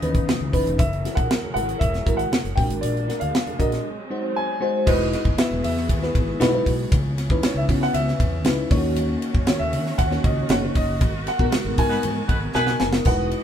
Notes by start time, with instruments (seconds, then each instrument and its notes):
Already playing: string section C#3 E3 B3 D#4, fm electric piano D#3 E3 C#4 D#4 B4, grand piano D#5
0.02 fretless electric bass D#2, fm electric piano E3 C#4 D#4 B4, closed hi-hat, high conga
0.15 kick, closed hi-hat
0.28 snare, muted conga, high conga
0.41 fretless electric bass C#2
0.53 fretless electric bass F#1, fm electric piano E3 C#4 D#4 B4, kick, open hi-hat
0.67 fretless electric bass E1, closed hi-hat
0.78 fretless electric bass F#1, string section F#3 G#4 A#4, grand piano E5, kick, closed hi-hat, muted conga, low conga
0.92 closed hi-hat, muted conga
1.05 fm electric piano G#3 E4 F#4 A4, snare, closed hi-hat
1.12 fm electric piano A#4, grand piano F#5
1.17 fretless electric bass A#1, kick, closed hi-hat
1.31 snare, muted conga
1.43 high conga
1.54 fretless electric bass G#1, fm electric piano G#3 E4 F#4 A#4, grand piano F#5, closed hi-hat
1.69 closed hi-hat
1.79 fretless electric bass E1, grand piano E5, kick, closed hi-hat, muted conga, low conga
1.93 snare, closed hi-hat, muted conga
2.06 fretless electric bass G#1, fm electric piano G#3 E4 F#4 A#4, kick, closed hi-hat, high conga
2.17 grand piano F#5, closed hi-hat
2.32 snare, muted conga, high conga
2.44 fretless electric bass F#1, closed hi-hat
2.56 fretless electric bass A#1, fm electric piano G#3 C4 F#4 A#4, string section G#3 A#3 D4, grand piano G5, kick, open hi-hat
2.63 fm electric piano D4
2.70 fretless electric bass G#1, closed hi-hat
2.81 fretless electric bass A#1, grand piano D5, closed hi-hat, low conga
2.95 closed hi-hat, muted conga
3.08 fm electric piano G#3 D4 F#4 A#4, snare, closed hi-hat
3.20 fretless electric bass D2, grand piano F5, closed hi-hat
3.34 snare, muted conga
3.46 closed hi-hat, muted conga, high conga
3.59 fretless electric bass A#1, fm electric piano G#3 D4 F#4 A#4, grand piano D#5, kick, closed hi-hat
3.72 snare, closed hi-hat
3.85 string section F#3 C4
4.10 fm electric piano G#3 D#4 F#4 C5
4.36 grand piano G#5
4.61 fm electric piano G#3 D#4 F#4 C5
4.86 fretless electric bass E1, string section E3 B3 F#4 G#4, fm electric piano G#3 D#4 E4 F#4 B4, grand piano D#5, kick, crash, muted conga, low conga
5.00 muted conga
5.12 grand piano D#5, snare, ride
5.25 fretless electric bass F#1, kick
5.37 fm electric piano G#3 B3 E4 F#4 B4, grand piano E5, snare, ride
5.51 fretless electric bass E1, muted conga, high conga
5.64 fretless electric bass E2, grand piano E5, open hi-hat, ride
5.77 snare
5.89 fretless electric bass D#2, kick, hi-hat pedal, ride, muted conga, low conga
6.02 fm electric piano G#3 B3 E4 F#4 B4, snare
6.15 fretless electric bass G#1, kick, ride, high conga
6.40 fretless electric bass B1, fm electric piano G#3 D#4 E4 F#4 B4, snare, ride, high conga
6.53 fm electric piano F#3 D#4 E4 F#4 B4
6.60 fm electric piano G#3
6.66 fretless electric bass B1, kick, open hi-hat, ride
6.91 fretless electric bass C#2, string section C#3 E3 B3 C#4, kick, hi-hat pedal, ride, low conga
7.04 muted conga
7.18 snare, ride
7.30 fretless electric bass D#2, fm electric piano G#3 C#4 D#4 E4 B4, kick
7.42 grand piano C#5, snare, ride, muted conga
7.54 fretless electric bass C#2, grand piano E5, muted conga, high conga
7.68 fretless electric bass C#3, fm electric piano G#3 B3 C#4 E4 F#4, kick, open hi-hat, ride
7.82 grand piano F#5, snare
7.93 fretless electric bass C#2, grand piano E5, hi-hat pedal, ride, low conga
8.08 snare
8.18 fretless electric bass E2, kick, ride, high conga
8.45 fretless electric bass C#2, fm electric piano G#3 C#4 D#4 E4 B4, snare, ride, muted conga, high conga
8.57 muted conga
8.71 fretless electric bass D#2, string section D#3 A#3 C#4 F#4, fm electric piano A#3 C#4 D#4 E4 C#5, kick, open hi-hat, ride
8.77 fm electric piano F#4
8.96 hi-hat pedal, ride, muted conga, low conga
9.09 muted conga
9.22 ride
9.35 fretless electric bass F#2, kick
9.47 fm electric piano D#3 A#3 C#4 F#4 C#5, grand piano C#5, snare, ride, muted conga
9.59 fretless electric bass D#2, grand piano E5, high conga
9.73 fretless electric bass D#3, open hi-hat, ride
9.86 snare
9.98 fretless electric bass D#2, grand piano F#5, kick, hi-hat pedal, ride, low conga
10.11 fm electric piano A#3 C#4 D#4 F#4 C#5, snare, muted conga
10.24 fretless electric bass C#2, grand piano D#5, kick, ride, high conga
10.49 fretless electric bass F#1, fm electric piano A#3 C#4 D#4 F#4 C#5, grand piano F#5, snare, ride, muted conga, high conga
10.61 fm electric piano A#3 C#4 D#4 F#4 C#5, muted conga
10.75 fretless electric bass F#1, grand piano D#5, kick, open hi-hat, ride
11.00 fretless electric bass G#1, string section G#3 B3 A#4, kick, hi-hat pedal, ride, low conga
11.14 muted conga
11.27 grand piano F#5, snare, ride
11.39 fretless electric bass A#1, fm electric piano G#3 B3 D#4 F#4 A#4, kick, high conga
11.52 snare, ride, muted conga
11.65 fretless electric bass G#1, muted conga, high conga
11.78 fretless electric bass G#2, fm electric piano G#3 B3 D#4 F#4 A#4, grand piano G#5, kick, open hi-hat, ride
11.89 horn section D#4 F#4 B4, snare
12.03 fretless electric bass G#2, hi-hat pedal, ride, muted conga, low conga
12.28 fretless electric bass G#1, horn section D#4 F#4 B4, kick, ride, high conga
12.54 fretless electric bass B1, fm electric piano G#3 B3 D#4 F#4 A#4, horn section D#4 F#4 B4, grand piano G#5, snare, high conga
12.67 snare
12.80 fretless electric bass F#1, fm electric piano G#3 B3 D#4 F#4 A#4, grand piano G#5, snare
12.93 snare
13.05 fretless electric bass E1, string section E3 F#4 G#4 D#5, fm electric piano G#3 D#4 E4 F#4 B4, grand piano F#5, kick, splash, muted conga, low conga
13.31 ride